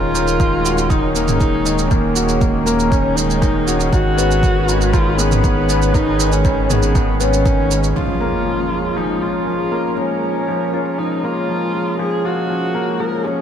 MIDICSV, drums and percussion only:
0, 0, Header, 1, 2, 480
1, 0, Start_track
1, 0, Key_signature, 6, "major"
1, 0, Tempo, 504202
1, 1819, Time_signature, 4, 2, 24, 8
1, 12771, End_track
2, 0, Start_track
2, 0, Title_t, "Drums"
2, 145, Note_on_c, 9, 82, 69
2, 240, Note_off_c, 9, 82, 0
2, 263, Note_on_c, 9, 82, 41
2, 359, Note_off_c, 9, 82, 0
2, 380, Note_on_c, 9, 36, 98
2, 381, Note_on_c, 9, 82, 31
2, 475, Note_off_c, 9, 36, 0
2, 476, Note_off_c, 9, 82, 0
2, 624, Note_on_c, 9, 82, 71
2, 719, Note_off_c, 9, 82, 0
2, 742, Note_on_c, 9, 82, 40
2, 837, Note_off_c, 9, 82, 0
2, 859, Note_on_c, 9, 36, 100
2, 861, Note_on_c, 9, 82, 32
2, 955, Note_off_c, 9, 36, 0
2, 956, Note_off_c, 9, 82, 0
2, 1101, Note_on_c, 9, 82, 67
2, 1196, Note_off_c, 9, 82, 0
2, 1219, Note_on_c, 9, 45, 59
2, 1219, Note_on_c, 9, 82, 39
2, 1314, Note_off_c, 9, 45, 0
2, 1314, Note_off_c, 9, 82, 0
2, 1339, Note_on_c, 9, 36, 89
2, 1339, Note_on_c, 9, 82, 29
2, 1434, Note_off_c, 9, 36, 0
2, 1434, Note_off_c, 9, 82, 0
2, 1579, Note_on_c, 9, 82, 67
2, 1674, Note_off_c, 9, 82, 0
2, 1699, Note_on_c, 9, 82, 41
2, 1795, Note_off_c, 9, 82, 0
2, 1819, Note_on_c, 9, 36, 98
2, 1819, Note_on_c, 9, 82, 28
2, 1914, Note_off_c, 9, 36, 0
2, 1914, Note_off_c, 9, 82, 0
2, 2055, Note_on_c, 9, 82, 70
2, 2151, Note_off_c, 9, 82, 0
2, 2178, Note_on_c, 9, 82, 39
2, 2273, Note_off_c, 9, 82, 0
2, 2299, Note_on_c, 9, 36, 96
2, 2299, Note_on_c, 9, 82, 28
2, 2394, Note_off_c, 9, 36, 0
2, 2394, Note_off_c, 9, 82, 0
2, 2540, Note_on_c, 9, 82, 71
2, 2635, Note_off_c, 9, 82, 0
2, 2662, Note_on_c, 9, 82, 37
2, 2757, Note_off_c, 9, 82, 0
2, 2778, Note_on_c, 9, 36, 98
2, 2783, Note_on_c, 9, 82, 30
2, 2873, Note_off_c, 9, 36, 0
2, 2878, Note_off_c, 9, 82, 0
2, 3023, Note_on_c, 9, 82, 63
2, 3118, Note_off_c, 9, 82, 0
2, 3144, Note_on_c, 9, 82, 38
2, 3240, Note_off_c, 9, 82, 0
2, 3258, Note_on_c, 9, 36, 89
2, 3260, Note_on_c, 9, 82, 30
2, 3354, Note_off_c, 9, 36, 0
2, 3355, Note_off_c, 9, 82, 0
2, 3500, Note_on_c, 9, 82, 63
2, 3596, Note_off_c, 9, 82, 0
2, 3621, Note_on_c, 9, 82, 40
2, 3716, Note_off_c, 9, 82, 0
2, 3738, Note_on_c, 9, 36, 97
2, 3742, Note_on_c, 9, 82, 27
2, 3833, Note_off_c, 9, 36, 0
2, 3838, Note_off_c, 9, 82, 0
2, 3984, Note_on_c, 9, 82, 69
2, 4079, Note_off_c, 9, 82, 0
2, 4105, Note_on_c, 9, 82, 36
2, 4200, Note_off_c, 9, 82, 0
2, 4218, Note_on_c, 9, 36, 95
2, 4223, Note_on_c, 9, 82, 30
2, 4313, Note_off_c, 9, 36, 0
2, 4318, Note_off_c, 9, 82, 0
2, 4462, Note_on_c, 9, 82, 68
2, 4557, Note_off_c, 9, 82, 0
2, 4581, Note_on_c, 9, 82, 37
2, 4676, Note_off_c, 9, 82, 0
2, 4699, Note_on_c, 9, 36, 106
2, 4700, Note_on_c, 9, 82, 31
2, 4794, Note_off_c, 9, 36, 0
2, 4795, Note_off_c, 9, 82, 0
2, 4940, Note_on_c, 9, 82, 63
2, 5035, Note_off_c, 9, 82, 0
2, 5062, Note_on_c, 9, 45, 60
2, 5062, Note_on_c, 9, 82, 39
2, 5158, Note_off_c, 9, 45, 0
2, 5158, Note_off_c, 9, 82, 0
2, 5179, Note_on_c, 9, 36, 91
2, 5180, Note_on_c, 9, 82, 30
2, 5274, Note_off_c, 9, 36, 0
2, 5275, Note_off_c, 9, 82, 0
2, 5419, Note_on_c, 9, 82, 67
2, 5515, Note_off_c, 9, 82, 0
2, 5543, Note_on_c, 9, 82, 39
2, 5638, Note_off_c, 9, 82, 0
2, 5659, Note_on_c, 9, 36, 89
2, 5661, Note_on_c, 9, 82, 30
2, 5754, Note_off_c, 9, 36, 0
2, 5757, Note_off_c, 9, 82, 0
2, 5901, Note_on_c, 9, 82, 71
2, 5996, Note_off_c, 9, 82, 0
2, 6019, Note_on_c, 9, 82, 40
2, 6114, Note_off_c, 9, 82, 0
2, 6138, Note_on_c, 9, 36, 101
2, 6139, Note_on_c, 9, 82, 31
2, 6234, Note_off_c, 9, 36, 0
2, 6235, Note_off_c, 9, 82, 0
2, 6382, Note_on_c, 9, 45, 63
2, 6382, Note_on_c, 9, 82, 70
2, 6477, Note_off_c, 9, 45, 0
2, 6477, Note_off_c, 9, 82, 0
2, 6498, Note_on_c, 9, 82, 40
2, 6594, Note_off_c, 9, 82, 0
2, 6619, Note_on_c, 9, 36, 102
2, 6620, Note_on_c, 9, 82, 30
2, 6714, Note_off_c, 9, 36, 0
2, 6715, Note_off_c, 9, 82, 0
2, 6860, Note_on_c, 9, 82, 67
2, 6955, Note_off_c, 9, 82, 0
2, 6983, Note_on_c, 9, 82, 40
2, 7078, Note_off_c, 9, 82, 0
2, 7098, Note_on_c, 9, 36, 94
2, 7102, Note_on_c, 9, 82, 28
2, 7193, Note_off_c, 9, 36, 0
2, 7197, Note_off_c, 9, 82, 0
2, 7341, Note_on_c, 9, 82, 69
2, 7436, Note_off_c, 9, 82, 0
2, 7461, Note_on_c, 9, 82, 40
2, 7556, Note_off_c, 9, 82, 0
2, 12771, End_track
0, 0, End_of_file